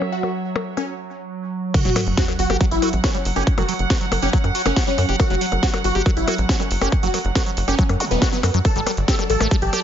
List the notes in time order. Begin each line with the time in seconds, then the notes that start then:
Already playing: F#3 F#4 C#5 E5
0.02 percussion blips
0.12 F#4
0.23 percussion blips
0.56 percussion blips
0.77 C#4, percussion blips
1.74 F#3 F#4, kick, closed hi-hat, crash, sub drop, percussion blips
1.85 F#1 F#3, closed hi-hat
1.96 F#3 F#5, open hi-hat, percussion blips
2.07 F#1, closed hi-hat
2.17 F#4, kick, snare, closed hi-hat
2.28 F#3, closed hi-hat, percussion blips
2.39 G1 F#4, open hi-hat
2.50 G1 G4, closed hi-hat, percussion blips
2.61 F#3, kick, closed hi-hat
2.71 A1 E4, closed hi-hat
2.82 F#4, open hi-hat, percussion blips
2.93 A1, closed hi-hat
3.04 C#4 F#4, kick, snare, closed hi-hat, percussion blips
3.15 G3, closed hi-hat
3.25 F#1, open hi-hat
3.36 F#1 C#4 G4, closed hi-hat, percussion blips
3.47 kick, closed hi-hat
3.58 F#1 F#3 F#4, closed hi-hat, percussion blips
3.69 F#3, open hi-hat
3.79 F#1, closed hi-hat
3.90 F#4, kick, snare, closed hi-hat, percussion blips
4.01 F#3, closed hi-hat
4.12 F#1, open hi-hat, percussion blips
4.22 F#1 C#4 G4, closed hi-hat
4.33 F#3, kick, closed hi-hat
4.44 F#2, closed hi-hat, percussion blips
4.55 F#4, open hi-hat
4.66 F#1 C#4, closed hi-hat, percussion blips
4.76 F#4, kick, snare, closed hi-hat
4.87 G3 C#4, closed hi-hat
4.98 F#2, open hi-hat, percussion blips
5.09 F#1 G4, closed hi-hat
5.20 F#4, kick, closed hi-hat, percussion blips
5.30 F#1 F#3, closed hi-hat
5.41 F#3, open hi-hat
5.52 F#1, closed hi-hat, percussion blips
5.63 F#4, kick, snare, closed hi-hat
5.74 F#3, closed hi-hat, percussion blips
5.84 G1 F#4, open hi-hat
5.95 G1 G4, closed hi-hat
6.06 F#3, kick, closed hi-hat, percussion blips
6.17 A1 E4, closed hi-hat
6.28 F#4, open hi-hat, percussion blips
6.38 A1, closed hi-hat
6.49 C#4 F#4, kick, snare, closed hi-hat
6.60 G3, closed hi-hat, percussion blips
6.71 F#1, open hi-hat
6.81 F#1 C#4 G4, closed hi-hat, percussion blips
6.92 kick, closed hi-hat
7.03 F#1 F#3 F#4, closed hi-hat
7.14 F#3, open hi-hat, percussion blips
7.25 F#1, closed hi-hat
7.35 F#4, kick, snare, closed hi-hat, percussion blips
7.46 F#3, closed hi-hat
7.57 F#1, open hi-hat
7.68 F#1 C#4 G4, closed hi-hat, percussion blips
7.79 F#3, kick, closed hi-hat
7.89 F#2, closed hi-hat, percussion blips
8.00 F#4, open hi-hat, zap
8.11 E1 B3, closed hi-hat
8.22 F#4, kick, snare, closed hi-hat, percussion blips
8.33 F#3 B3, closed hi-hat
8.43 F#2 F#4, open hi-hat, percussion blips
8.54 F#2 F#3, closed hi-hat
8.65 A4, kick, closed hi-hat, ride, percussion blips
8.76 G1 G3, closed hi-hat
8.87 G3, open hi-hat, percussion blips
8.97 G1 D5, closed hi-hat
9.08 G4 A4 A5, kick, snare, closed hi-hat, ride
9.19 G3, closed hi-hat, percussion blips
9.30 A1 A4, open hi-hat
9.40 A1 A3, closed hi-hat, percussion blips
9.51 G3, kick, closed hi-hat, ride
9.62 A1 G4, closed hi-hat
9.73 G4, open hi-hat, percussion blips